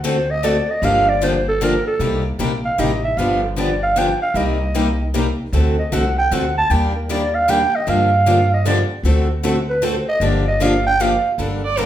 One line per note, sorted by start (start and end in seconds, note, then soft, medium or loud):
0.00 0.59 D2 loud
0.00 0.16 D3 loud
0.04 0.16 A3 loud
0.04 0.16 C4 loud
0.04 0.16 F#4 medium
0.04 0.16 A4 loud
0.04 0.32 C5 medium
0.31 0.45 D#5 loud
0.43 0.55 D3 medium
0.43 0.55 A3 medium
0.43 0.55 C4 medium
0.43 0.55 F#4 loud
0.43 0.56 A4 loud
0.43 0.72 D5 loud
0.70 0.86 D#5 loud
0.82 1.76 G1 loud
0.82 1.04 D3 medium
0.82 1.05 F3 medium
0.82 1.05 A#3 medium
0.82 1.05 D4 medium
0.82 1.05 G4 medium
0.82 1.10 F5 loud
1.09 1.25 D5 loud
1.22 1.33 D3 loud
1.22 1.33 F3 medium
1.22 1.34 A#3 medium
1.22 1.34 D4 medium
1.22 1.34 G4 loud
1.22 1.48 C5 medium
1.48 1.65 A4 loud
1.61 1.73 D3 medium
1.61 1.73 F3 loud
1.61 1.73 A#3 loud
1.61 1.73 D4 loud
1.61 1.73 G4 loud
1.61 1.86 A#4 loud
1.87 2.23 A4 loud
1.99 2.31 C2 medium
1.99 2.22 C3 medium
1.99 2.22 G3 medium
1.99 2.22 A#3 medium
1.99 2.22 D#4 medium
1.99 2.23 G4 medium
2.39 2.72 A#1 medium
2.39 2.51 C3 medium
2.39 2.51 G3 medium
2.39 2.51 A#3 medium
2.39 2.51 D#4 medium
2.39 2.51 G4 medium
2.65 2.81 F5 loud
2.78 3.12 A1 medium
2.78 2.90 C3 medium
2.78 2.90 G3 medium
2.78 2.90 A#3 medium
2.78 2.91 D#4 medium
2.78 2.91 G4 medium
2.78 3.04 D#5 medium
3.04 3.19 E5 medium
3.17 4.11 G1 medium
3.17 3.40 D3 medium
3.17 3.40 F3 medium
3.17 3.40 B3 medium
3.17 3.40 D4 medium
3.17 3.41 G4 medium
3.17 3.43 F5 medium
3.43 3.59 A4 medium
3.56 3.68 D3 medium
3.56 3.69 F3 medium
3.56 3.69 B3 medium
3.56 3.69 D4 medium
3.56 3.69 G4 loud
3.56 3.82 D5 medium
3.83 4.00 F5 loud
3.96 4.08 D3 medium
3.96 4.08 F3 loud
3.96 4.08 B3 medium
3.96 4.08 D4 medium
3.96 4.08 G4 loud
3.96 4.21 G5 loud
4.22 4.38 F5 loud
4.34 5.29 C2 medium
4.34 4.57 C3 medium
4.34 4.57 G3 medium
4.34 4.58 A#3 medium
4.34 4.58 D#4 medium
4.34 4.58 G4 medium
4.34 5.14 D#5 medium
4.75 4.86 C3 medium
4.75 4.86 G3 medium
4.75 4.86 A#3 medium
4.75 4.86 D#4 loud
4.75 4.87 G4 medium
5.14 5.25 C3 medium
5.14 5.25 G3 medium
5.14 5.26 A#3 loud
5.14 5.26 D#4 loud
5.14 5.26 G4 loud
5.52 5.84 D2 medium
5.52 5.75 D3 medium
5.52 5.75 A3 medium
5.52 5.75 C4 medium
5.52 5.75 F#4 medium
5.52 5.75 A4 medium
5.79 5.95 D#5 medium
5.92 6.25 C2 medium
5.92 6.03 D3 medium
5.92 6.04 A3 medium
5.92 6.04 C4 medium
5.92 6.04 F#4 loud
5.92 6.04 A4 loud
5.92 6.18 F#5 medium
6.18 6.35 G5 loud
6.31 6.64 D2 medium
6.31 6.43 D3 medium
6.31 6.43 A3 medium
6.31 6.43 C4 medium
6.31 6.43 F#4 medium
6.31 6.44 A4 loud
6.31 6.57 F#5 medium
6.58 6.72 A5 loud
6.70 7.64 D#2 medium
6.70 6.92 D#3 medium
6.70 6.92 G3 medium
6.70 6.92 A#3 medium
6.70 6.92 D4 medium
6.70 6.92 G4 medium
6.70 6.95 G5 loud
6.95 7.11 A#4 medium
7.09 7.21 D#3 medium
7.09 7.21 G3 medium
7.09 7.21 A#3 loud
7.09 7.21 D4 medium
7.09 7.21 G4 medium
7.09 7.36 D5 medium
7.35 7.52 F5 loud
7.48 7.60 D#3 medium
7.48 7.60 G3 medium
7.48 7.60 A#3 loud
7.48 7.60 D4 loud
7.48 7.60 G4 loud
7.48 7.77 G5 loud
7.75 7.91 D#5 loud
7.87 8.81 G2 medium
7.87 8.09 D3 medium
7.87 8.09 F3 medium
7.87 8.09 A#3 medium
7.87 8.09 D4 medium
7.87 8.09 G4 medium
7.87 8.52 F5 loud
8.26 8.38 D3 medium
8.26 8.38 F3 medium
8.26 8.38 A#3 medium
8.26 8.38 D4 loud
8.26 8.38 G4 loud
8.53 8.66 D#5 loud
8.66 8.77 D3 medium
8.66 8.77 F3 medium
8.66 8.77 A#3 medium
8.66 8.77 D4 loud
8.66 8.78 G4 loud
8.66 8.82 D5 medium
9.03 9.98 D2 medium
9.03 9.26 D3 medium
9.03 9.26 A3 medium
9.03 9.27 C4 medium
9.03 9.27 F#4 medium
9.03 9.27 A4 medium
9.43 9.55 D3 medium
9.43 9.55 A3 loud
9.43 9.55 C4 medium
9.43 9.56 F#4 loud
9.43 9.56 A4 loud
9.69 9.86 B4 loud
9.82 9.94 D3 loud
9.82 9.94 A3 medium
9.82 9.94 C4 medium
9.82 9.94 F#4 loud
9.82 9.94 A4 loud
9.82 10.08 C5 medium
10.08 10.25 D#5 loud
10.20 11.14 G1 medium
10.20 10.43 D3 medium
10.20 10.43 F3 medium
10.20 10.43 A#3 medium
10.20 10.44 D4 medium
10.20 10.44 G4 medium
10.20 10.47 D5 loud
10.48 10.64 D#5 loud
10.61 10.72 D3 loud
10.61 10.72 F3 loud
10.61 10.73 A#3 loud
10.61 10.73 D4 medium
10.61 10.73 G4 medium
10.61 10.86 F5 medium
10.87 11.03 G5 loud
11.00 11.11 D3 medium
11.00 11.11 F3 medium
11.00 11.12 A#3 medium
11.00 11.12 D4 medium
11.00 11.12 G4 loud
11.00 11.32 F5 loud
11.38 11.86 G1 medium
11.38 11.60 D3 medium
11.38 11.61 G3 medium
11.38 11.61 A#3 medium
11.38 11.61 D4 medium
11.38 11.61 A4 medium
11.64 11.80 D5 medium
11.77 11.86 D3 medium
11.77 11.86 G3 medium
11.77 11.86 A#3 medium
11.77 11.86 D4 medium
11.77 11.86 A4 medium
11.77 11.86 A#4 medium